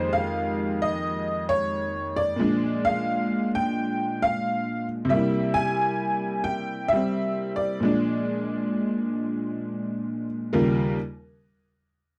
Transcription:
Already playing: F2 D#3 G#3 A#3 G4 C5
0.13 F5
0.82 D#5
1.49 C#5
2.16 D5
2.36 A#2 F3 G#3
2.41 D4
2.85 F5
3.55 G5
4.22 F5
5.05 C3
5.09 G3 A#3 E5
5.16 E4
5.54 G#5
6.44 G5
6.88 E5
6.93 G3 C4
7.56 D5
7.80 A#2 F3 G#3
7.85 D4
10.53 D#2 C#3 G3 F4 A#4

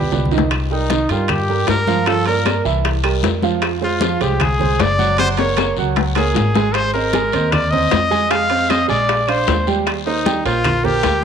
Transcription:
Already playing: B1 G4
0.12 C2 B3 B4 D5, low conga, low timbale, short guiro
0.25 low conga
0.31 D#3 D#4 D#5, low timbale, short guiro
0.38 low bongo, low conga
0.51 high bongo, high conga, high timbale, long guiro, claves
0.71 G3 D#4 G4 A#4, high bongo, high conga
0.90 D#3 D#4 D#5, high bongo, high conga, high timbale, short guiro
1.09 G2 G3 F4 G4 A#4, high bongo, high conga, high timbale, short guiro
1.28 G4, high bongo, high conga, low conga, high timbale, long guiro, claves
1.49 G3 G4 A#4, high conga
1.67 G2 A#4, high bongo, low bongo, high conga, high timbale, low timbale, short guiro
1.87 F3 F4 F5, high bongo, high conga, short guiro
2.06 F3 F4 A4 F5, high bongo, high conga, high timbale, long guiro, claves
2.25 A#3 A#4 D5, high bongo, high conga, high timbale
2.46 A#3 A#4 D5, high bongo, high conga, high timbale, short guiro, claves
2.65 C2 E3 E4 E5, short guiro
2.84 high bongo, high conga, high timbale, long guiro
3.04 G3 G4 A#4, high bongo, high conga, high timbale, claves
3.23 F2, high bongo, low bongo, high conga, low timbale, short guiro
3.42 F3 F4 F5, high bongo, high conga, short guiro
3.62 high bongo, high timbale, long guiro, claves
3.82 G#3 F4 G#4 C5, high bongo, high conga
4.01 F3 F4 F5, high bongo, high conga, high timbale, short guiro
4.20 C2 G#3 G4 G#4 C5, high bongo, high conga, high timbale, short guiro
4.40 G#4, high bongo, high conga, low conga, high timbale, long guiro, claves
4.60 G#3 G#4 C5, high conga, low conga
4.79 F#1 D5, high bongo, low bongo, high conga, high timbale, short guiro
4.99 F#3 F#4 F#5, high bongo, high conga, short guiro
5.18 F#3 F#4 C5 F#5, high bongo, high conga, high timbale, claves
5.37 A#3 A#4 C#5, high bongo, high conga, high timbale
5.57 A#3 A#4 C#5, high bongo, high conga, high timbale, short guiro, claves
5.77 C#2 F#3 F#4 F#5, short guiro
5.96 low bongo, high conga, high timbale, long guiro
6.15 A#3 G#4 A#4 C#5, low bongo, high conga, high timbale, claves
6.34 G#1, low bongo, high conga, low timbale, short guiro
6.55 G#3 G#4 G#5, low bongo, high conga, short guiro
6.74 C5, high bongo, high conga, high timbale, long guiro, claves
6.94 C4 A#4 C5 D#5, high bongo, high conga
7.13 G#3 G#4 G#5, high bongo, high conga, high timbale, short guiro
7.32 D#2 C4 C5 D#5, high bongo, high conga, high timbale, short guiro
7.52 D5, high bongo, high conga, low conga, high timbale, long guiro, claves
7.71 C4 C5 D#5, high conga, low conga
7.91 F2, high bongo, low bongo, high conga, high timbale, low timbale, short guiro
8.11 G#3 G#4 G#5, high bongo, high conga, short guiro
8.31 G#3 G#4 F5 G#5, high bongo, high conga, high timbale, long guiro, claves
8.50 C4 C5 D#5, high bongo, high conga, high timbale
8.70 C4 C5 D#5, high bongo, high conga, high timbale, short guiro, claves
8.88 A#1 G#3 G#4 D5 G#5, short guiro
9.08 high bongo, high conga, high timbale, long guiro
9.28 D4 C5 D5 F5, high bongo, high conga, high timbale, claves
9.47 D#2, high bongo, low bongo, high conga, low timbale, short guiro
9.67 G3 G4 G5, high bongo, high conga, short guiro
9.86 high bongo, high conga, high timbale, long guiro, claves
10.06 A#3 D#4 A#4 C5, high bongo, high conga
10.25 G3 G4 G5, high bongo, high conga, high timbale, short guiro
10.45 A#1 A#3 F4 A#4 C5, high bongo, high conga, high timbale, short guiro
10.64 high bongo, high conga, low conga, high timbale, long guiro, claves
10.84 A#3 G4 A#4 C5, high conga, low conga
11.03 D2, high bongo, low bongo, high conga, high timbale, short guiro

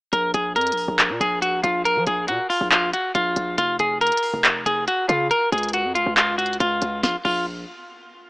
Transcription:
0.13 A#1 A#4, closed hi-hat
0.34 A#1 G#4, closed hi-hat
0.56 F2 A#4, closed hi-hat
0.61 closed hi-hat
0.67 closed hi-hat
0.72 A#1, closed hi-hat
0.77 open hi-hat
0.88 A#1
0.99 clap, closed hi-hat
1.10 A#2
1.21 A#1 G#4, closed hi-hat
1.42 F#4, closed hi-hat
1.63 A#1 F4, closed hi-hat
1.85 A#4, closed hi-hat
1.96 F3
2.07 A#1 G#4, closed hi-hat
2.28 A#2 F#4, closed hi-hat
2.50 F4, open hi-hat
2.61 A#1
2.71 F4, clap, closed hi-hat
2.93 F#4, closed hi-hat
3.15 A#1 F4, closed hi-hat
3.36 A#1, closed hi-hat
3.58 F1 F4, closed hi-hat
3.79 F1 G#4, closed hi-hat
4.01 A#4, closed hi-hat
4.07 closed hi-hat
4.12 closed hi-hat
4.17 closed hi-hat
4.23 open hi-hat
4.34 F1
4.44 clap, closed hi-hat
4.66 F1 G#4, closed hi-hat
4.88 F#4, closed hi-hat
5.09 C#3 F4, closed hi-hat
5.31 A#4, closed hi-hat
5.52 C#2 G#4, closed hi-hat
5.58 closed hi-hat
5.63 closed hi-hat
5.69 closed hi-hat
5.73 F#4, closed hi-hat
5.85 F2
5.95 C#2 F4, closed hi-hat
6.06 C#2
6.17 F4, clap, closed hi-hat
6.38 F#4, closed hi-hat
6.46 closed hi-hat
6.53 closed hi-hat
6.60 C#2 F4, closed hi-hat
6.82 C#2, closed hi-hat
7.03 A#1 F4, snare
7.25 A#1 F4, crash

